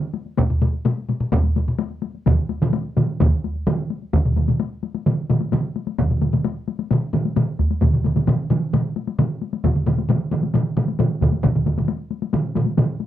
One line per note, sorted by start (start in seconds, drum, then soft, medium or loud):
0.02 taiko high soft
0.14 taiko high medium
0.26 taiko high soft
0.38 taiko loud
0.38 taiko low-mid medium
0.38 taiko high medium
0.50 taiko low-mid medium
0.50 taiko high soft
0.62 taiko low-mid loud
0.62 taiko high medium
0.73 taiko high soft
0.85 taiko low-mid loud
0.85 taiko high medium
0.98 taiko high soft
1.09 taiko low-mid medium
1.09 taiko high medium
1.20 taiko low-mid medium
1.20 taiko high soft
1.32 taiko loud
1.32 taiko low-mid loud
1.32 taiko high medium
1.44 taiko high soft
1.56 taiko low-mid medium
1.56 taiko high medium
1.67 taiko low-mid medium
1.67 taiko high soft
1.79 taiko high medium
1.91 taiko high soft
2.02 taiko high medium
2.14 taiko high soft
2.26 taiko loud
2.26 taiko low-mid loud
2.26 taiko mid loud
2.26 taiko high medium
2.38 taiko high soft
2.49 taiko high medium
2.61 taiko low-mid loud
2.61 taiko mid loud
2.61 taiko high soft
2.73 taiko high medium
2.85 taiko high soft
2.96 taiko low-mid medium
2.96 taiko mid medium
2.96 taiko high soft
3.08 taiko high soft
3.20 taiko loud
3.20 taiko low-mid loud
3.20 taiko mid loud
3.20 taiko high medium
3.44 taiko high soft
3.55 taiko high soft
3.67 taiko low-mid loud
3.67 taiko mid loud
3.67 taiko high medium
3.79 taiko high soft
3.90 taiko high soft
4.02 taiko high soft
4.13 taiko medium
4.13 taiko low-mid medium
4.13 taiko mid medium
4.13 taiko high medium
4.25 taiko low-mid medium
4.25 taiko mid medium
4.36 taiko low-mid medium
4.36 taiko mid medium
4.36 taiko high soft
4.48 taiko low-mid medium
4.48 taiko mid medium
4.48 taiko high soft
4.60 taiko high medium
4.83 taiko high soft
4.95 taiko high soft
5.06 taiko low-mid medium
5.06 taiko mid medium
5.06 taiko high medium
5.30 taiko low-mid medium
5.30 taiko mid medium
5.30 taiko high soft
5.41 taiko high medium
5.52 taiko low-mid medium
5.52 taiko mid medium
5.52 taiko high medium
5.76 taiko high soft
5.87 taiko high medium
5.98 taiko medium
5.98 taiko low-mid medium
5.98 taiko mid medium
5.98 taiko high medium
6.10 taiko low-mid medium
6.10 taiko mid medium
6.22 taiko low-mid medium
6.22 taiko mid medium
6.22 taiko high medium
6.33 taiko low-mid medium
6.33 taiko mid medium
6.33 taiko high medium
6.45 taiko high medium
6.68 taiko high medium
6.79 taiko high medium
6.91 taiko low-mid medium
6.91 taiko mid medium
6.91 taiko high medium
7.13 taiko low-mid medium
7.13 taiko mid medium
7.13 taiko high medium
7.25 taiko high medium
7.36 taiko low-mid medium
7.36 taiko mid medium
7.36 taiko high medium
7.59 taiko medium
7.59 taiko high soft
7.71 taiko high soft
7.82 taiko medium
7.82 taiko low-mid medium
7.82 taiko mid medium
7.82 taiko high medium
7.94 taiko low-mid medium
7.94 taiko mid medium
8.04 taiko low-mid medium
8.04 taiko mid medium
8.04 taiko high medium
8.16 taiko low-mid medium
8.16 taiko mid medium
8.16 taiko high medium
8.27 taiko low-mid medium
8.27 taiko mid medium
8.27 taiko high medium
8.50 taiko low-mid medium
8.50 taiko mid loud
8.50 taiko high medium
8.73 taiko low-mid medium
8.73 taiko mid medium
8.73 taiko high medium
8.96 taiko high medium
9.07 taiko high medium
9.19 taiko low-mid medium
9.19 taiko mid loud
9.19 taiko high medium
9.42 taiko high soft
9.53 taiko high medium
9.64 taiko medium
9.64 taiko low-mid medium
9.64 taiko mid medium
9.64 taiko high medium
9.75 taiko low-mid medium
9.75 taiko mid medium
9.86 taiko low-mid medium
9.86 taiko mid medium
9.86 taiko high medium
9.98 taiko high medium
10.09 taiko low-mid medium
10.09 taiko mid loud
10.09 taiko high medium
10.31 taiko low-mid medium
10.31 taiko mid medium
10.31 taiko high medium
10.43 taiko high medium
10.54 taiko low-mid loud
10.54 taiko mid medium
10.54 taiko high medium
10.77 taiko low-mid medium
10.77 taiko mid medium
10.77 taiko high medium
10.88 taiko high medium
10.99 taiko low-mid loud
10.99 taiko mid medium
10.99 taiko high medium
11.21 taiko medium
11.21 taiko low-mid medium
11.21 taiko mid loud
11.21 taiko high soft
11.32 taiko high soft
11.44 taiko loud
11.44 taiko low-mid medium
11.44 taiko mid medium
11.44 taiko high medium
11.55 taiko low-mid medium
11.55 taiko mid medium
11.66 taiko low-mid medium
11.66 taiko mid medium
11.66 taiko high medium
11.78 taiko low-mid medium
11.78 taiko mid medium
11.78 taiko high soft
11.88 taiko high medium
12.11 taiko high soft
12.22 taiko high medium
12.33 taiko low-mid loud
12.33 taiko mid loud
12.33 taiko high medium
12.55 taiko low-mid loud
12.55 taiko mid medium
12.55 taiko high soft
12.66 taiko high soft
12.77 taiko low-mid loud
12.77 taiko mid loud
12.77 taiko high medium
13.00 taiko high soft